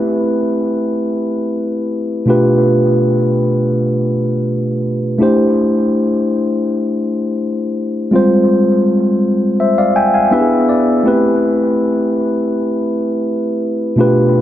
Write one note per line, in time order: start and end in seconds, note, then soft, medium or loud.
0.00 2.22 A3 medium
0.00 2.26 C4 medium
0.00 2.23 E4 medium
0.00 2.24 G4 medium
0.00 2.24 B4 medium
2.26 5.15 B2 medium
2.26 5.15 A3 medium
2.26 5.16 D4 medium
2.26 5.16 F4 medium
2.26 5.17 G4 medium
2.30 5.17 B4 medium
5.18 8.08 A3 medium
5.18 8.08 D4 medium
5.18 8.09 E4 medium
5.18 8.09 G4 medium
5.23 8.10 C5 medium
8.11 10.29 G3 medium
8.11 10.27 G#3 medium
8.11 10.28 C4 medium
8.11 10.28 F4 medium
8.16 9.21 C5 medium
9.60 9.77 C5 medium
9.60 9.77 E5 medium
9.78 9.95 D5 medium
9.78 9.95 F5 medium
9.96 10.13 E5 medium
9.96 10.13 G5 medium
9.96 10.13 G#5 medium
10.14 10.49 F5 medium
10.14 10.48 G#5 medium
10.31 11.05 B3 medium
10.31 11.05 D4 medium
10.31 11.04 E4 medium
10.31 10.39 G4 medium
10.31 11.06 B4 medium
10.31 10.66 E5 medium
10.39 11.09 G#4 medium
10.69 11.03 D5 medium
11.04 13.93 A3 medium
11.04 13.93 C4 medium
11.04 13.94 E4 medium
11.04 13.95 G4 medium
11.08 13.95 B4 medium
13.96 14.41 B2 medium
13.96 14.41 A3 medium
13.96 14.41 D4 medium
13.96 14.41 F4 medium
13.96 14.41 G4 medium
14.01 14.41 B4 medium